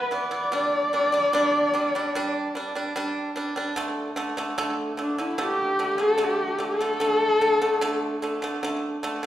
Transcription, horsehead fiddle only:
0.00 0.14 B4 loud
0.12 2.96 D5 loud
5.01 5.22 D4 medium
5.20 5.43 E4 medium
5.41 6.04 G4 loud
6.03 6.26 A4 loud
6.24 6.66 G4 loud
6.65 8.24 A4 loud

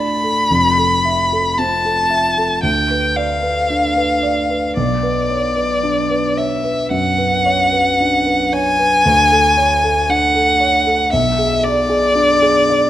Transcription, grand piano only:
0.00 0.52 A2 soft
0.00 0.53 D4 soft
0.00 0.23 A4 soft
0.00 0.52 D5 soft
0.23 0.51 A4 soft
0.50 2.59 F1 soft
0.50 2.59 F2 soft
0.78 1.21 A4 soft
1.05 1.47 E5 soft
1.32 1.74 A4 soft
1.59 2.00 C4 soft
1.85 2.26 A4 soft
2.10 2.52 E5 soft
2.38 2.64 A4 soft
2.63 4.73 D2 soft
2.91 3.33 B4 soft
3.17 3.59 D5 soft
3.43 3.86 B4 soft
3.70 4.13 D4 soft
3.97 4.39 B4 soft
4.23 4.66 D5 soft
4.50 4.77 B4 soft
4.77 6.87 B1 soft
5.03 5.46 B4 soft
5.30 5.72 C#5 soft
5.56 5.99 B4 soft
5.83 6.26 D4 soft
6.10 6.53 B4 soft
6.37 6.80 C#5 soft
6.64 7.08 B4 soft
6.91 7.35 F#2 soft
7.18 7.62 B4 soft
7.46 7.89 C#5 soft
7.73 8.16 B4 soft
8.00 8.43 D4 soft
8.27 8.69 B4 soft
8.53 8.95 C#5 medium
8.79 9.05 B4 soft
9.05 11.09 D2 medium
9.31 9.73 A4 soft
9.57 9.99 C#5 medium
9.84 10.25 A4 soft
10.09 10.51 D4 soft
10.35 10.76 A4 soft
10.60 11.02 C#5 soft
10.87 11.13 A4 soft
11.13 12.90 B1 medium
11.38 11.79 G#4 soft
11.64 12.05 D5 medium
11.89 12.32 G#4 medium
12.15 12.59 D4 soft
12.42 12.88 G#4 medium
12.70 12.90 D5 medium

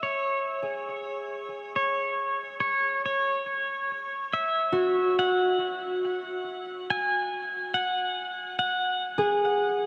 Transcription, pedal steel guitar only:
0.03 1.75 C#5 medium
1.76 2.59 C#5 medium
2.60 3.04 C#5 medium
3.06 4.37 C#5 medium
4.33 5.19 E5 medium
5.19 6.90 F#5 loud
6.90 7.74 G#5 loud
7.74 8.58 F#5 medium
8.59 9.84 F#5 medium

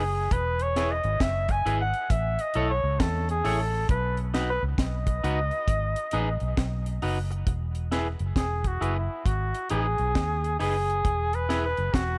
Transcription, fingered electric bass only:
0.00 0.27 F#1 medium
0.32 1.00 E1 medium
1.05 1.19 G#1 loud
1.66 1.91 G#1 loud
2.10 2.36 A1 medium
2.56 2.81 B1 medium
2.84 2.98 C#2 medium
3.00 3.41 E2 loud
3.45 3.85 A1 medium
3.89 4.58 B1 loud
4.63 4.77 C#2 medium
4.78 5.19 B1 loud
5.24 5.49 C#2 loud
5.68 5.94 G#1 loud
6.13 6.39 A1 loud
6.41 6.56 B1 medium
6.58 6.98 B1 loud
7.03 7.43 F#1 medium
7.47 8.16 E1 loud
8.20 8.35 F#1 medium
8.36 8.77 E1 loud
8.82 9.07 F#1 loud
9.26 9.52 G#1 medium
9.71 9.97 A1 medium
9.99 10.14 B1 loud
10.16 10.56 D#2 loud
10.61 11.01 F#1 medium
11.05 11.74 E1 loud
11.78 11.93 F#1 medium
11.94 12.18 E1 medium

